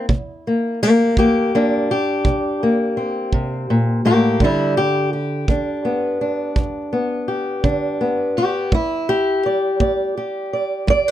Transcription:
Already playing: E4
0.09 C3, kick
0.47 A#3
0.83 A#3 G4
1.17 E3 A#3 G4, kick
1.55 A#3 D4
1.91 G4
2.25 C3, kick
2.63 A#3
2.97 C4
3.33 C3, kick
3.70 A#2
4.05 A2 A#3 G4
4.40 G2 D3 G3, kick
4.45 E4
4.77 G4
5.13 G4
5.48 D3 D4, kick
5.85 B3
6.21 D4
6.56 G2, kick
6.93 B3
7.28 G4
7.64 D3 D4, kick
8.01 B3
8.37 B3 G4
8.72 G3 E4, kick
9.09 G4
9.46 D5
9.80 B3 D5, kick
10.17 G4
10.53 D5
10.87 G3 D5, kick
11.08 B4

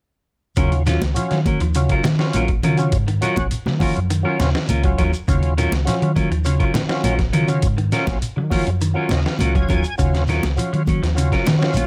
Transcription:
0.56 D#2 C#3 F#3 C#4 F4 A#4, muted clean electric guitar stroke, kick, closed hi-hat, shekere
0.72 muted clean electric guitar stroke, closed hi-hat
0.86 D#3 F#3 C#4 F4, muted clean electric guitar stroke, snare, closed hi-hat, shekere
1.01 C#2, muted clean electric guitar stroke, snare, closed hi-hat, high conga, shekere
1.14 F3 F#3 C#4 F4, closed hi-hat, shekere
1.31 D#3 F#3, muted clean electric guitar stroke, snare, closed hi-hat
1.45 F#3 C#4 A#4, kick, closed hi-hat, high conga, low conga, shekere
1.60 D#2 F3, muted clean electric guitar stroke, closed hi-hat
1.74 C#3 F#3 C#4 F4, muted clean electric guitar stroke, closed hi-hat, shekere
1.89 F#3 C#4 F4 A#4, kick, closed hi-hat
2.04 D#3, muted clean electric guitar stroke, snare, closed hi-hat, high conga, shekere
2.19 D#3 F#3 C#4 F4, snare, shekere
2.33 A#1 F#3 C#4 F4 A#4, closed hi-hat, high conga, shekere
2.48 muted clean electric guitar stroke, kick, closed hi-hat
2.63 C#3 D#3 F#3 C#4 F4 A#4, closed hi-hat, low conga, shekere
2.77 C#3 F#3 C#4 F4, muted clean electric guitar stroke, closed hi-hat, shekere
2.92 G#2, kick, closed hi-hat, shekere
3.08 D#3, muted clean electric guitar stroke, closed hi-hat
3.21 F#3 C#4 F4 F#4 A#4, closed hi-hat, shekere
3.36 A#1, muted clean electric guitar stroke, kick, closed hi-hat, high conga, low conga, shekere
3.51 muted fingered electric bass stroke, closed hi-hat, shekere
3.66 D#3 F#3, muted clean electric guitar stroke, snare, high conga
3.79 F3 F#3 C#4 F4 A#4, muted clean electric guitar stroke, kick, open hi-hat, high conga, low conga, shekere
3.96 F#2, muted clean electric guitar stroke, closed hi-hat
4.10 D#3, muted clean electric guitar stroke, closed hi-hat, shekere
4.23 F#3 C#4 F4 A#4
4.39 D#2 C#3, muted clean electric guitar stroke, snare, closed hi-hat, high conga, shekere
4.54 D#3, snare, shekere
4.68 C#2 C#4 F4 A#4, closed hi-hat, high conga, shekere
4.83 F#3 C#4 F4, muted clean electric guitar stroke, kick, closed hi-hat
4.98 D#2 F#3 C#4 F4 A#4, kick, closed hi-hat, low conga, shekere
5.13 muted clean electric guitar stroke, closed hi-hat, shekere
5.28 D#2 C#3 F#3 C#4 F4, kick, closed hi-hat, shekere
5.43 muted clean electric guitar stroke, closed hi-hat
5.58 D#3 F#3 C#4 F4 A#4, closed hi-hat, shekere
5.72 C#2, snare, closed hi-hat, high conga, shekere
5.85 F3 F#3 C#4 F4, snare, closed hi-hat, shekere
6.02 D#3 F#3, muted clean electric guitar stroke, closed hi-hat
6.16 F#3 C#4 F4 A#4, kick, closed hi-hat, high conga, low conga, shekere
6.31 D#2 F3, muted clean electric guitar stroke, closed hi-hat
6.45 C#3 F#3 C#4 F4, muted clean electric guitar stroke, closed hi-hat, shekere
6.60 F#3 C#4 F4 A#4, kick, closed hi-hat
6.74 D#3, muted clean electric guitar stroke, snare, closed hi-hat, high conga, shekere
6.89 D#3 F#3 C#4 F4, snare, shekere
7.04 A#1 F#3 C#4 F4 A#4, closed hi-hat, high conga, shekere
7.19 muted clean electric guitar stroke, kick, snare, closed hi-hat
7.32 C#3 D#3 F#3 C#4 F4 A#4, closed hi-hat, low conga, shekere
7.48 C#3 F#3 C#4 F4, muted clean electric guitar stroke, closed hi-hat, shekere
7.62 G#2, kick, closed hi-hat, shekere
7.77 D#3, muted clean electric guitar stroke, closed hi-hat
7.92 F#3 C#4 F4 A#4, muted clean electric guitar stroke, snare, closed hi-hat, shekere
8.07 A#1, muted clean electric guitar stroke, kick, snare, closed hi-hat, high conga, shekere
8.22 muted fingered electric bass stroke, closed hi-hat, shekere
8.36 D#3 F#3, muted clean electric guitar stroke
8.50 F3 F#3 C#4 F4 A#4, kick, open hi-hat, high conga, low conga, shekere
8.67 F#2, muted clean electric guitar stroke, closed hi-hat
8.81 D#3, muted clean electric guitar stroke, closed hi-hat, shekere
8.94 F#3 C#4 F4 A#4
9.09 D#2 C#3 D#5, muted clean electric guitar stroke, snare, closed hi-hat, high conga, shekere
9.24 D#3 F5, snare, shekere
9.39 C#2 F#3 C#4 F4 A#4 F#5, closed hi-hat, high conga, shekere
9.54 F#3 C#4 F4 G#5, muted clean electric guitar stroke, kick, closed hi-hat
9.69 D#2 F#3 C#4 F4 A#4, kick, closed hi-hat, low conga, shekere
9.84 muted clean electric guitar stroke, closed hi-hat, shekere
9.98 D#2 C#3 F#3 C#4 F4, kick, closed hi-hat, shekere
10.14 muted clean electric guitar stroke, snare, closed hi-hat
10.28 D#3 F#3 C#4 F4 A#4, snare, closed hi-hat, shekere
10.43 C#2, muted clean electric guitar stroke, snare, closed hi-hat, high conga, shekere
10.56 F3 F#3 C#4 F4, closed hi-hat, shekere
10.73 D#3 F#3, muted clean electric guitar stroke, closed hi-hat
10.87 F#3 C#4, muted clean electric guitar stroke, kick, closed hi-hat, high conga, low conga, shekere
11.03 D#2 F3, muted clean electric guitar stroke, snare, closed hi-hat
11.15 C#3 F#3 C#4 F4, muted clean electric guitar stroke, closed hi-hat, shekere
11.32 F#3 C#4 F4 A#4, kick, snare, closed hi-hat
11.46 D#3, muted clean electric guitar stroke, snare, closed hi-hat, high conga, shekere
11.59 D#3 F#3 C#4 F4, snare, shekere
11.74 A#1 F#3 F4, muted clean electric guitar stroke, closed hi-hat, high conga, shekere

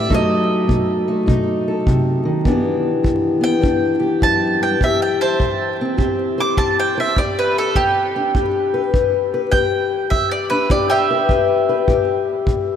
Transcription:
Already playing: E5
0.09 B2 F#3 A3 D#4 A4, kick
0.14 D#5
0.67 B2, kick
1.08 A3
1.26 B2 D#4, kick
1.68 A4
1.87 C3, kick
2.25 D#3
2.45 E2 E3 B3 D4 G4, kick
3.03 E2, kick
3.41 B3 G5
3.61 E2 D4, kick
4.00 G4
4.21 F#2 A5, kick
4.61 G2 G5
4.80 A2 G4 E5, kick
5.02 G5
5.21 C5 A5
5.40 A2, kick
5.81 C4
5.97 A2 G4, kick
6.38 C5 D6
6.57 A2 G4 A5, kick
6.79 G5
6.98 C5 E5
7.16 E2 G4 D5, kick
7.39 B4
7.58 A4
7.76 E2 G4, kick
8.16 D4
8.35 E2 G4, kick
8.74 B4
8.93 E2 G4, kick
9.34 B4
9.52 E2 G4 G5, kick
10.10 E2 E5, kick
10.31 D5
10.50 D4 B4
10.69 E2 G4 D5, kick
10.90 G4 E5
11.11 B4
11.29 E2 G4, kick
11.69 B4
11.88 A2 G4, kick
12.46 A2, kick

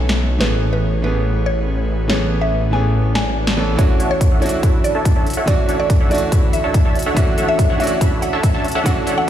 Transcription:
Already playing: B1 E3 B3 C#4 D4 A4 C#5 E5 G#5
0.09 snare
0.39 A1 E3 A3 B3 C#4 G#4 B4, snare
0.43 G#4
0.73 B4
1.02 E3 A3 B3 C#4 B4
1.06 G#4
1.46 C#5
2.08 E3 A3 B3 C#4 C#5, snare
2.12 G#4
2.41 E5
2.71 E3 A3 B3 C#4 G#5
2.75 G#4
2.94 swell
3.15 G#5, snare
3.47 snare
3.56 E3 A3 B3 C#4 A4
3.77 D2 E3 A3 C#4 D4 F#4 A4 C#5 E5 F#5, kick, closed hi-hat
3.81 F#4
4.00 D4 A4 C#5 E5 F#5, closed hi-hat
4.11 C#5
4.21 kick, closed hi-hat
4.32 D4 A4 C#5 E5 F#5
4.40 E3 A3 D4 E4 C#5, closed hi-hat
4.44 F#4, closed hi-hat
4.49 closed hi-hat
4.63 D4 A4 C#5 E5 B5, kick, closed hi-hat
4.84 D5, closed hi-hat
4.95 D4 A4 C#5 E5 A5
5.05 kick, closed hi-hat
5.16 D4 A4 C#5 E5 A5
5.27 closed hi-hat
5.30 closed hi-hat
5.33 D4 A4 C#5 E5 F#5, closed hi-hat
5.46 E3 A3 C#4 D4 F#4 A4 C#5 D5 E5 F#5, kick, closed hi-hat
5.69 D4 A4 C#5 E5 F#5, closed hi-hat
5.80 D5
5.90 kick, closed hi-hat
6.00 D4 A4 C#5 E5 F#5
6.09 E3 A3 D4 E4 F#4 D5, closed hi-hat
6.15 closed hi-hat
6.18 closed hi-hat
6.32 D4 A4 C#5 E5 B5, kick, closed hi-hat
6.53 E5, closed hi-hat
6.64 D4 A4 C#5 E5 A5
6.74 kick, closed hi-hat
6.85 D4 A4 C#5 E5 A5
6.95 closed hi-hat
6.99 closed hi-hat
7.02 D4 A4 C#5 E5 F#5, closed hi-hat
7.14 E3 A3 C#4 D4 A4 C#5 E5 F#5, kick, closed hi-hat
7.19 F#4
7.38 D4 A4 C#5 E5 F#5, closed hi-hat
7.49 E5
7.59 kick, closed hi-hat
7.70 D4 A4 C#5 E5 F#5
7.78 E3 A3 C#4 D4 E5, closed hi-hat
7.82 F#4, closed hi-hat
7.87 closed hi-hat
8.01 D4 A4 C#5 E5 B5, kick, closed hi-hat
8.22 F#5, closed hi-hat
8.33 D4 A4 C#5 E5 A5
8.43 kick, closed hi-hat
8.54 D4 A4 C#5 E5 A5
8.65 closed hi-hat
8.68 closed hi-hat
8.72 D4 A4 C#5 E5 F#5, closed hi-hat
8.84 E3 A3 C#4 D4 A4 C#5 E5 F#5, kick, closed hi-hat
8.88 F#4
9.07 D4 A4 C#5 E5 F#5, closed hi-hat
9.18 F#5

